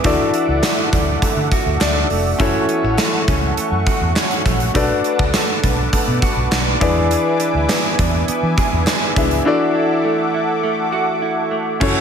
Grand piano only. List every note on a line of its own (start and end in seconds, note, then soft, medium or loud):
0.04 2.35 D4 medium
0.04 2.36 E4 medium
0.04 2.36 F#4 medium
0.04 2.36 A4 medium
0.04 1.80 D5 medium
1.81 2.36 D5 medium
2.39 4.70 C#4 medium
2.39 4.71 E4 medium
2.39 4.71 F#4 medium
2.39 4.71 A4 medium
2.39 4.72 C#5 medium
4.74 6.76 D4 medium
4.74 6.77 F#4 medium
4.74 6.77 A4 medium
4.74 6.77 B4 medium
4.74 6.78 D5 medium
6.80 9.12 D4 medium
6.80 9.12 E4 medium
6.80 9.12 G#4 medium
6.80 9.13 B4 medium
6.80 9.13 D5 medium
9.16 9.44 D4 medium
9.16 9.44 E4 medium
9.16 9.46 G#4 medium
9.16 9.46 B4 medium
9.16 9.46 E5 medium
9.45 11.77 D4 medium
9.45 11.77 E4 medium
9.45 11.77 F#4 medium
9.45 11.78 A4 medium
9.45 11.78 D5 medium
11.80 12.01 C#4 medium
11.80 12.01 E4 medium
11.80 12.01 F#4 medium
11.80 12.01 A4 medium
11.80 12.01 C#5 medium